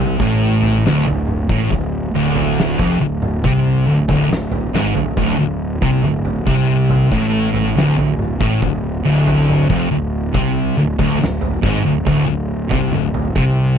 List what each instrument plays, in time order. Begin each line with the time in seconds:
Already playing: fingered electric bass C2, distorted electric guitar C3
0.20 fingered electric bass A1, distorted electric guitar A2, kick
0.62 floor tom
0.85 fingered electric bass D1, distorted electric guitar D2, snare
1.05 fingered electric bass D1, distorted electric guitar D2, floor tom
1.27 mid tom
1.49 fingered electric bass A1, distorted electric guitar A2, kick
1.70 fingered electric bass D1, distorted electric guitar D2, kick, floor tom
2.14 fingered electric bass D1, distorted electric guitar D2
2.35 floor tom
2.60 snare
2.79 fingered electric bass F1, distorted electric guitar F2, kick, floor tom
3.00 fingered electric bass D1, distorted electric guitar D2
3.22 mid tom
3.44 fingered electric bass C2, distorted electric guitar C3, kick, floor tom
3.86 fingered electric bass D1, distorted electric guitar D2
4.08 fingered electric bass D1, distorted electric guitar D2, kick, floor tom
4.29 fingered electric bass D1, distorted electric guitar D2, snare
4.52 floor tom
4.73 fingered electric bass G#1, distorted electric guitar G#2, snare
4.95 fingered electric bass D1, distorted electric guitar D2, floor tom
5.17 fingered electric bass D1, distorted electric guitar D2, kick, floor tom
5.38 fingered electric bass D1, distorted electric guitar D2
5.82 fingered electric bass C2, distorted electric guitar C3, kick, floor tom
6.04 fingered electric bass D1, distorted electric guitar D2, mid tom
6.25 floor tom
6.46 fingered electric bass C2, distorted electric guitar C3, kick
6.90 floor tom
7.12 fingered electric bass A1, distorted electric guitar A2, kick
7.54 floor tom
7.76 fingered electric bass D1, distorted electric guitar D2, snare
7.98 fingered electric bass D1, distorted electric guitar D2, floor tom
8.19 mid tom
8.40 fingered electric bass A1, distorted electric guitar A2, kick
8.62 fingered electric bass D1, distorted electric guitar D2, kick, floor tom
9.05 fingered electric bass D1, distorted electric guitar D2
9.27 floor tom
9.49 mid tom
9.69 fingered electric bass F1, distorted electric guitar F2, kick, floor tom
9.91 fingered electric bass D1, distorted electric guitar D2
10.33 fingered electric bass C2, distorted electric guitar C3, kick, floor tom
10.78 fingered electric bass D1, distorted electric guitar D2
10.99 fingered electric bass D1, distorted electric guitar D2, kick, floor tom
11.21 fingered electric bass D1, distorted electric guitar D2, snare
11.41 floor tom
11.63 fingered electric bass G#1, distorted electric guitar G#2, kick, mid tom
11.86 fingered electric bass D1, distorted electric guitar D2
12.07 fingered electric bass D1, distorted electric guitar D2, kick, floor tom
12.29 fingered electric bass D1, distorted electric guitar D2
12.70 fingered electric bass C2, distorted electric guitar C3, kick, floor tom
12.92 fingered electric bass D1, distorted electric guitar D2, mid tom
13.14 floor tom
13.36 fingered electric bass C2, distorted electric guitar C3, kick